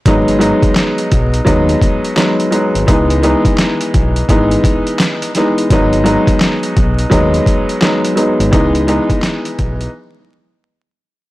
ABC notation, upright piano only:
X:1
M:4/4
L:1/8
Q:"Swing 16ths" 1/4=85
K:C#m
V:1 name="Upright piano"
[F,G,B,D] [F,G,B,D]3 [F,G,B,D]2 [F,G,B,D] [F,G,B,D] | [E,G,B,D] [E,G,B,D]3 [E,G,B,D]3 [E,G,B,D] | [F,G,B,D] [F,G,B,D]3 [F,G,B,D]2 [F,G,B,D] [F,G,B,D] | [E,G,B,D] [E,G,B,D]3 z4 |]